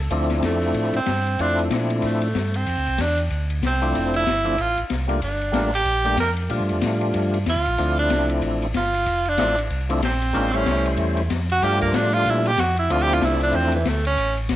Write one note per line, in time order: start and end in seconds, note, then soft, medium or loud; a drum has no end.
0.10 0.42 D2 medium
0.10 0.99 F3 medium
0.10 0.99 A3 medium
0.10 0.99 C4 medium
0.10 1.00 D4 medium
0.10 1.00 E4 medium
0.10 kick soft
0.10 ride medium
0.30 snare soft
0.30 ride soft
0.42 0.74 F2 medium
0.42 0.92 A3 medium
0.42 kick soft
0.42 snare medium
0.42 hi-hat pedal medium
0.42 ride medium
0.62 ride soft
0.74 0.93 A2 medium
0.74 kick soft
0.74 ride medium
0.94 1.01 A2 soft
0.94 1.43 C4 medium
0.94 ride soft
1.06 1.38 G2 medium
1.06 kick soft
1.06 snare medium
1.06 hi-hat pedal soft
1.06 ride medium
1.26 ride soft
1.39 1.70 F2 medium
1.39 2.28 F3 medium
1.39 2.28 A3 medium
1.39 2.28 C4 medium
1.39 2.28 D4 medium
1.39 1.60 D4 medium
1.39 2.28 E4 medium
1.39 kick soft
1.39 ride medium
1.59 ride soft
1.70 2.02 A#2 medium
1.70 kick soft
1.70 snare medium
1.70 hi-hat pedal medium
1.70 ride medium
1.90 ride soft
2.02 2.34 A2 medium
2.02 kick soft
2.02 ride medium
2.06 2.57 A3 medium
2.22 ride soft
2.35 2.66 G2 medium
2.35 kick soft
2.35 snare medium
2.35 hi-hat pedal soft
2.35 ride medium
2.54 3.03 C4 medium
2.54 ride soft
2.66 2.77 F2 medium
2.66 kick soft
2.66 ride medium
2.78 2.88 D2 medium
2.86 2.98 C2 medium
2.86 ride soft
2.98 3.30 E2 medium
2.98 3.20 D4 medium
2.98 kick soft
2.98 snare medium
2.98 hi-hat pedal medium
2.98 ride medium
3.17 ride soft
3.30 3.62 D2 medium
3.30 kick soft
3.30 ride medium
3.50 ride soft
3.62 3.94 C2 medium
3.62 kick soft
3.62 snare medium
3.62 hi-hat pedal medium
3.62 ride medium
3.66 4.12 C4 medium
3.82 4.24 F3 medium
3.82 4.24 A3 medium
3.82 4.24 C4 medium
3.82 4.24 D4 medium
3.82 4.25 E4 medium
3.82 ride soft
3.95 4.26 F1 medium
3.95 kick soft
3.95 ride medium
4.14 4.63 E4 loud
4.14 ride soft
4.26 4.58 G1 medium
4.26 kick soft
4.26 snare medium
4.26 hi-hat pedal medium
4.26 ride medium
4.44 4.56 F3 medium
4.44 4.57 A3 medium
4.44 4.57 C4 medium
4.44 4.57 D4 medium
4.44 4.57 E4 medium
4.44 ride soft
4.58 4.76 A1 medium
4.58 4.79 F4 medium
4.58 kick soft
4.58 ride medium
4.77 4.84 A1 soft
4.77 ride soft
4.90 5.21 C2 medium
4.90 kick soft
4.90 snare medium
4.90 hi-hat pedal soft
4.90 ride medium
5.08 5.20 G3 medium
5.08 5.20 A3 medium
5.08 5.20 A#3 medium
5.08 5.21 D4 medium
5.08 5.21 F4 medium
5.08 ride soft
5.22 5.53 G1 medium
5.22 5.71 D4 medium
5.22 kick soft
5.22 ride medium
5.41 ride soft
5.52 5.85 A1 medium
5.52 5.71 G3 medium
5.52 5.71 A3 medium
5.52 5.71 A#3 medium
5.52 5.71 D4 medium
5.52 5.71 F4 medium
5.52 kick soft
5.52 snare medium
5.52 hi-hat pedal medium
5.52 ride medium
5.73 6.16 G4 medium
5.73 ride medium
5.85 6.17 A#1 medium
5.85 kick soft
5.85 ride medium
6.04 6.17 G3 medium
6.04 6.17 A3 medium
6.04 6.17 A#3 medium
6.04 6.17 D4 medium
6.04 6.17 G4 medium
6.04 ride soft
6.17 6.49 F2 medium
6.17 6.31 A#4 medium
6.17 kick soft
6.17 snare medium
6.17 hi-hat pedal medium
6.17 ride medium
6.37 ride soft
6.49 6.60 A#2 medium
6.49 7.39 F3 medium
6.49 7.38 G3 medium
6.49 7.39 A3 medium
6.49 7.39 D4 medium
6.49 7.39 F4 medium
6.49 kick soft
6.49 ride medium
6.60 6.71 G2 medium
6.69 6.81 F2 medium
6.69 ride soft
6.81 7.13 A2 medium
6.81 kick soft
6.81 snare medium
6.81 hi-hat pedal medium
6.81 ride medium
7.01 ride soft
7.14 7.45 G2 medium
7.14 kick soft
7.14 ride medium
7.34 ride soft
7.46 7.56 E2 medium
7.46 7.96 F4 medium
7.46 kick soft
7.46 snare medium
7.46 hi-hat pedal medium
7.46 ride medium
7.56 7.67 D2 medium
7.65 7.77 A#1 medium
7.65 ride soft
7.78 8.09 D2 medium
7.78 8.67 F3 medium
7.78 8.67 A3 medium
7.78 8.67 C4 medium
7.78 8.67 D4 medium
7.78 8.67 E4 medium
7.78 kick soft
7.78 ride medium
7.97 8.28 D4 medium
7.97 ride soft
8.10 8.41 C2 medium
8.10 kick soft
8.10 snare medium
8.10 hi-hat pedal medium
8.10 ride medium
8.29 ride medium
8.42 8.73 A1 medium
8.42 kick soft
8.42 ride medium
8.62 ride soft
8.74 9.05 G1 medium
8.74 9.30 F4 medium
8.74 kick soft
8.74 snare medium
8.74 hi-hat pedal medium
8.74 ride medium
8.94 ride medium
9.06 9.37 F1 medium
9.06 kick soft
9.06 ride medium
9.25 9.59 D4 loud
9.25 ride soft
9.38 9.70 A1 medium
9.38 9.56 F3 medium
9.38 9.56 A3 medium
9.38 9.56 C4 medium
9.38 9.56 D4 medium
9.38 9.56 E4 medium
9.38 kick soft
9.38 snare medium
9.38 hi-hat pedal medium
9.38 ride medium
9.59 ride medium
9.70 10.01 C2 medium
9.70 kick soft
9.70 ride medium
9.89 10.01 F3 medium
9.89 10.01 A3 medium
9.89 10.01 C4 medium
9.89 10.02 D4 medium
9.89 10.02 E4 medium
9.89 ride medium
10.02 10.33 A#1 medium
10.02 10.58 C4 medium
10.02 kick soft
10.02 snare medium
10.02 hi-hat pedal medium
10.02 ride medium
10.22 ride soft
10.33 10.65 A1 medium
10.33 10.51 G#3 medium
10.33 10.51 A#3 medium
10.33 10.52 C#4 medium
10.33 10.52 D4 medium
10.33 10.52 F4 medium
10.33 kick soft
10.33 ride medium
10.53 11.22 G3 medium
10.53 11.23 A3 medium
10.53 11.23 C#4 medium
10.53 10.87 C#4 loud
10.53 11.23 E4 medium
10.53 11.23 C5 medium
10.53 ride soft
10.66 10.97 C2 medium
10.66 kick soft
10.66 snare medium
10.66 hi-hat pedal medium
10.66 ride medium
10.86 ride medium
10.97 11.29 E2 medium
10.97 kick soft
10.97 ride medium
11.17 ride soft
11.30 11.61 F2 medium
11.30 kick soft
11.30 snare medium
11.30 hi-hat pedal medium
11.30 ride medium
11.50 11.65 F#4 medium
11.50 ride soft
11.62 11.93 G2 medium
11.62 12.51 F3 medium
11.62 12.51 G3 medium
11.62 12.51 A3 medium
11.62 12.51 D4 medium
11.62 12.52 F4 medium
11.62 11.81 G4 loud
11.62 kick soft
11.62 ride medium
11.81 11.97 A#3 medium
11.81 kick soft
11.81 ride soft
11.94 12.25 A2 medium
11.94 12.15 D4 medium
11.94 kick soft
11.94 snare medium
11.94 hi-hat pedal medium
11.94 ride medium
12.13 12.31 F4 loud
12.13 ride medium
12.26 12.57 A#2 medium
12.26 kick soft
12.26 ride medium
12.30 12.49 E4 medium
12.46 12.62 G4 loud
12.46 ride medium
12.58 12.89 F2 loud
12.58 12.78 F#4 medium
12.58 kick soft
12.58 snare medium
12.58 hi-hat pedal medium
12.58 ride medium
12.77 12.93 E4 medium
12.77 ride soft
12.90 13.21 D2 medium
12.90 13.78 F3 medium
12.90 13.79 A3 medium
12.90 13.79 C4 medium
12.90 13.79 D4 medium
12.90 13.79 E4 medium
12.90 13.04 F4 medium
12.90 kick soft
12.90 ride medium
13.03 13.16 G4 loud
13.09 snare medium
13.09 ride soft
13.14 13.26 F4 medium
13.22 13.53 C2 medium
13.22 13.42 E4 medium
13.22 kick soft
13.22 snare medium
13.22 hi-hat pedal medium
13.22 ride medium
13.40 13.58 D4 medium
13.40 ride medium
13.53 13.85 E2 medium
13.53 13.74 C4 medium
13.53 kick soft
13.53 ride medium
13.72 13.90 E3 medium
13.72 ride soft
13.85 14.17 D2 medium
13.85 14.06 A3 medium
13.85 kick soft
13.85 snare medium
13.85 hi-hat pedal medium
13.85 ride medium
14.05 14.36 C#4 medium
14.05 ride medium
14.17 14.48 A1 medium
14.17 kick soft
14.17 ride medium
14.37 ride soft
14.49 14.56 A#1 medium
14.49 kick soft
14.49 snare medium
14.49 hi-hat pedal medium
14.49 ride medium